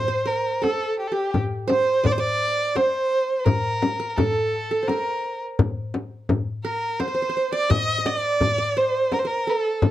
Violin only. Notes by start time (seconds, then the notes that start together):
Already playing: C5
0.27 A#4
0.63 A4
0.99 G4
1.08 A4
1.13 G4
1.70 C5
2.06 D5
2.12 C5
2.20 D5
2.76 C5
3.39 C5
3.45 A#4
4.09 A#4
4.17 A4
4.88 A#4
6.65 A#4
7.00 C5
7.54 D5
7.70 D#5
8.07 D#5
8.19 D5
8.78 C5
9.13 A#4
9.19 C5
9.27 A#4
9.49 A4